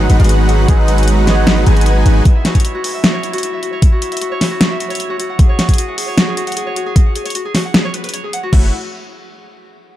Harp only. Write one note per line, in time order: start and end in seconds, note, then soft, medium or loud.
2.26 2.64 E4 medium
2.35 2.94 E5 medium
2.45 2.74 F#4 medium
2.55 3.13 C#5 loud
2.65 2.84 E4 medium
2.75 3.03 F#4 loud
2.84 3.23 E4 medium
2.94 3.53 E5 medium
3.04 3.33 F#4 medium
3.14 3.72 C#5 loud
3.23 3.43 E4 medium
3.33 3.62 F#4 loud
3.43 3.82 E4 medium
3.53 4.12 E5 medium
3.63 3.92 F#4 medium
3.73 4.31 C#5 loud
3.92 4.21 F#4 loud
4.02 4.41 E4 medium
4.12 4.70 E5 medium
4.21 4.51 F#4 medium
4.32 4.90 C#5 loud
4.41 4.60 E4 medium
4.51 4.80 F#4 loud
4.61 4.99 E4 medium
4.71 6.43 E5 medium
4.80 5.09 F#4 medium
4.90 5.49 C#5 loud
5.00 7.61 E4 medium
5.10 5.19 F#4 loud
5.19 5.58 F#4 medium
5.29 5.88 F#5 medium
5.39 5.68 G#4 medium
5.49 6.07 C#5 loud
5.59 5.78 F#4 medium
5.69 5.97 G#4 loud
5.78 6.17 F#4 medium
5.88 6.47 F#5 medium
5.98 6.27 G#4 medium
6.08 6.66 C#5 loud
6.17 6.37 F#4 medium
6.27 6.56 G#4 loud
6.37 6.76 F#4 medium
6.47 7.06 F#5 medium
6.57 6.86 G#4 medium
6.67 7.25 C#5 loud
6.76 6.96 F#4 medium
6.86 7.15 G#4 loud
6.96 7.00 F#4 medium
7.06 7.10 F#5 medium
7.16 7.22 G#4 medium
7.26 7.29 C#5 loud
7.35 7.39 F#4 medium
7.45 7.49 G#4 loud
7.55 7.59 F#4 medium
7.65 7.69 F#5 medium
7.74 7.81 G#4 medium
7.84 7.88 C#5 loud
7.94 8.00 B4 medium
8.04 8.08 B4 loud
8.14 8.20 C#5 medium
8.24 8.28 G#4 medium
8.33 8.36 F#5 medium
8.43 8.47 F#4 loud
8.53 8.71 E4 medium